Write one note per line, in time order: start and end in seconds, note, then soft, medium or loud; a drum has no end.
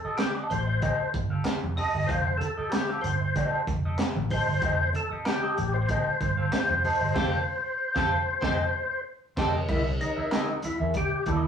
0.00 0.16 A4 medium
0.05 0.18 C4 medium
0.05 0.18 G4 medium
0.05 0.18 A4 medium
0.05 0.18 D#5 medium
0.05 muted fingered electric bass stroke soft
0.17 0.32 G4 medium
0.17 snare loud
0.17 clap medium
0.17 closed hi-hat medium
0.35 0.49 C4 medium
0.35 0.49 G4 medium
0.35 0.50 A4 medium
0.35 0.50 D#5 medium
0.50 0.79 A1 medium
0.50 1.10 C5 medium
0.50 muted clean electric guitar stroke soft
0.50 closed hi-hat medium
0.50 muted conga soft
0.50 low conga medium
0.67 muted clean electric guitar stroke medium
0.81 1.01 C4 medium
0.81 1.01 G4 medium
0.81 1.01 A4 loud
0.81 1.01 D#5 medium
0.81 kick medium
0.81 closed hi-hat medium
0.81 high conga medium
1.13 1.42 G1 medium
1.13 muted clean electric guitar stroke soft
1.13 kick medium
1.13 closed hi-hat medium
1.13 muted conga soft
1.13 high conga medium
1.30 1.44 C4 medium
1.30 1.44 G4 medium
1.30 1.44 A4 medium
1.30 1.44 F5 medium
1.45 muted fingered electric bass stroke soft
1.45 muted clean electric guitar stroke medium
1.45 snare loud
1.45 clap medium
1.45 closed hi-hat medium
1.45 muted conga soft
1.62 1.76 F1 medium
1.62 muted clean electric guitar stroke medium
1.62 high conga medium
1.76 1.92 C4 medium
1.76 1.92 G4 medium
1.76 1.92 A4 medium
1.76 2.10 D#5 loud
1.76 1.93 D#5 medium
1.76 open hi-hat medium
1.76 muted conga soft
1.76 low conga medium
1.94 2.08 G1 medium
1.94 2.08 C4 soft
1.94 2.08 G4 soft
1.94 2.08 A4 medium
1.94 2.08 D#5 medium
2.07 2.37 F1 medium
2.07 2.28 C4 medium
2.07 2.26 G4 medium
2.07 2.26 A4 medium
2.07 2.37 C5 loud
2.07 2.26 F5 medium
2.07 kick loud
2.07 closed hi-hat loud
2.07 muted conga soft
2.27 muted clean electric guitar stroke soft
2.38 2.72 A4 medium
2.38 closed hi-hat medium
2.38 high conga medium
2.42 muted clean electric guitar stroke soft
2.57 2.72 C4 medium
2.57 2.71 G4 medium
2.57 2.71 A4 medium
2.57 2.71 D#5 medium
2.57 muted fingered electric bass stroke medium
2.70 3.00 G4 medium
2.70 muted clean electric guitar stroke soft
2.70 snare loud
2.70 clap medium
2.70 closed hi-hat medium
2.75 muted conga soft
2.89 3.03 C4 medium
2.89 3.03 G4 medium
2.89 3.04 A4 medium
2.89 3.05 F5 medium
3.01 3.32 G1 medium
3.01 3.62 C5 medium
3.01 muted clean electric guitar stroke soft
3.01 closed hi-hat medium
3.01 low conga medium
3.21 muted clean electric guitar stroke soft
3.35 3.56 C4 medium
3.35 3.57 G4 loud
3.35 3.57 A4 medium
3.35 3.57 D#5 medium
3.35 kick medium
3.35 closed hi-hat medium
3.35 high conga medium
3.67 3.96 F1 medium
3.67 muted clean electric guitar stroke soft
3.67 kick loud
3.67 closed hi-hat medium
3.67 high conga medium
3.85 3.98 C4 medium
3.85 3.99 G4 medium
3.85 3.98 A4 medium
3.85 3.98 D#5 medium
3.98 muted fingered electric bass stroke medium
3.98 muted clean electric guitar stroke soft
3.98 snare loud
3.98 clap loud
3.98 closed hi-hat medium
4.15 4.29 A1 medium
4.15 muted clean electric guitar stroke medium
4.15 high conga medium
4.30 4.50 C4 medium
4.30 4.49 G4 medium
4.30 4.49 A4 medium
4.30 4.90 C5 loud
4.30 4.48 D#5 medium
4.30 kick medium
4.30 open hi-hat medium
4.30 muted conga soft
4.30 low conga medium
4.47 4.61 G1 medium
4.47 muted clean electric guitar stroke soft
4.62 4.91 F1 loud
4.62 4.82 C4 medium
4.62 4.80 G4 medium
4.62 4.79 A4 loud
4.62 4.79 D#5 medium
4.62 kick loud
4.62 closed hi-hat loud
4.80 muted clean electric guitar stroke medium
4.93 5.09 A4 loud
4.93 muted clean electric guitar stroke soft
4.93 closed hi-hat medium
4.93 high conga medium
5.11 5.25 C4 medium
5.11 5.25 G4 medium
5.11 5.25 A4 medium
5.11 5.24 D#5 medium
5.11 muted fingered electric bass stroke soft
5.26 5.76 G4 medium
5.26 snare loud
5.26 clap medium
5.26 closed hi-hat medium
5.42 5.56 C4 medium
5.42 5.56 G4 medium
5.42 5.57 A4 medium
5.42 5.58 D#5 medium
5.57 5.86 A1 medium
5.57 muted clean electric guitar stroke soft
5.57 closed hi-hat medium
5.57 low conga medium
5.74 9.01 C5 medium
5.74 muted clean electric guitar stroke medium
5.88 6.08 C4 medium
5.88 6.08 G4 medium
5.88 6.08 A4 medium
5.88 6.09 D#5 loud
5.88 kick loud
5.88 closed hi-hat medium
5.88 muted conga soft
5.88 high conga medium
6.21 6.49 G1 loud
6.21 muted clean electric guitar stroke soft
6.21 kick medium
6.21 closed hi-hat medium
6.21 muted conga soft
6.21 high conga medium
6.37 6.51 C4 medium
6.37 6.51 G4 medium
6.37 6.51 A4 medium
6.37 6.51 F5 medium
6.52 muted clean electric guitar stroke soft
6.52 muted fingered electric bass stroke soft
6.52 snare loud
6.52 clap loud
6.52 closed hi-hat medium
6.69 6.82 F1 loud
6.69 muted clean electric guitar stroke soft
6.69 high conga medium
6.84 6.99 C4 medium
6.84 6.99 G4 medium
6.84 6.99 A4 medium
6.84 6.99 D#5 medium
6.84 open hi-hat medium
6.84 muted conga soft
6.84 low conga medium
7.00 7.14 G1 medium
7.00 7.13 C4 medium
7.00 7.13 G4 medium
7.00 7.14 A4 medium
7.00 7.14 D#5 medium
7.14 7.38 F1 loud
7.14 7.36 C4 loud
7.14 7.31 C4 medium
7.14 7.37 G4 loud
7.14 7.31 G4 loud
7.14 7.31 A4 loud
7.14 7.37 A4 loud
7.14 7.31 C5 medium
7.14 7.37 F5 medium
7.14 kick loud
7.14 snare loud
7.14 crash medium
7.95 8.17 F1 loud
7.95 8.11 C4 medium
7.95 8.17 C4 loud
7.95 8.11 G4 loud
7.95 8.17 G4 loud
7.95 8.11 A4 loud
7.95 8.17 A4 loud
7.95 8.11 C5 loud
7.95 8.16 F5 medium
7.95 kick loud
7.95 snare loud
8.41 8.64 F1 medium
8.41 8.58 C4 loud
8.41 8.63 C4 loud
8.41 8.58 G4 medium
8.41 8.64 G4 loud
8.41 8.58 A4 loud
8.41 8.64 A4 loud
8.41 8.58 C5 loud
8.41 8.65 D#5 loud
8.41 kick loud
8.41 snare loud
9.36 9.59 F1 loud
9.36 9.53 C4 loud
9.36 9.59 C4 loud
9.36 9.53 G4 loud
9.36 9.59 G4 medium
9.36 9.53 A4 loud
9.36 9.59 A4 loud
9.36 9.53 C5 loud
9.36 9.60 D#5 medium
9.36 kick loud
9.36 snare loud
9.36 crash medium
9.68 9.97 C2 loud
9.68 9.88 C4 medium
9.68 9.83 E4 medium
9.68 9.85 E4 medium
9.68 9.84 A#4 medium
9.68 9.84 D#5 medium
9.68 kick loud
9.68 crash loud
9.68 muted conga soft
9.68 low conga medium
9.85 muted clean electric guitar stroke soft
10.00 10.60 D#4 medium
10.00 muted clean electric guitar stroke soft
10.00 closed hi-hat medium
10.00 high conga medium
10.17 10.30 C4 medium
10.17 10.31 E4 medium
10.17 10.31 A#4 medium
10.17 10.30 E5 medium
10.17 muted fingered electric bass stroke medium
10.31 10.51 C4 medium
10.31 10.51 E4 medium
10.31 10.51 A#4 medium
10.31 10.51 D#5 medium
10.31 snare loud
10.31 clap medium
10.31 closed hi-hat medium
10.31 muted conga soft
10.62 10.79 E4 medium
10.62 muted clean electric guitar stroke soft
10.62 muted fingered electric bass stroke soft
10.62 closed hi-hat medium
10.62 muted conga soft
10.62 low conga medium
10.80 10.93 E2 medium
10.80 10.93 C4 medium
10.80 10.94 E4 soft
10.80 10.94 A#4 medium
10.80 10.93 E5 medium
10.94 11.29 G4 loud
10.94 kick loud
10.94 closed hi-hat medium
10.94 muted conga soft
10.94 high conga medium
11.12 muted clean electric guitar stroke soft
11.26 11.47 D#2 loud
11.26 11.47 C4 medium
11.26 11.44 E4 medium
11.26 11.47 E4 medium
11.26 11.43 A#4 medium
11.26 11.42 D#5 medium
11.26 kick medium
11.26 closed hi-hat medium
11.26 muted conga soft
11.44 muted clean electric guitar stroke medium